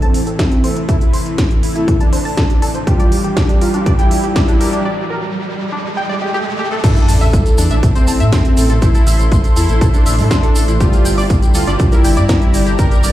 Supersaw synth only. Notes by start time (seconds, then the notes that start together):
0.02 C4
0.39 C4
0.89 E4
1.63 E4
2.00 D4
2.38 D4
2.87 F4
3.61 F4
3.99 E4
4.36 E4
6.84 D4
7.58 D4
7.95 C4
8.33 C4
8.82 E4
9.57 E4
9.94 D4
10.31 D4
10.81 F4
11.55 F4
11.92 E4
12.29 E4
12.79 A#4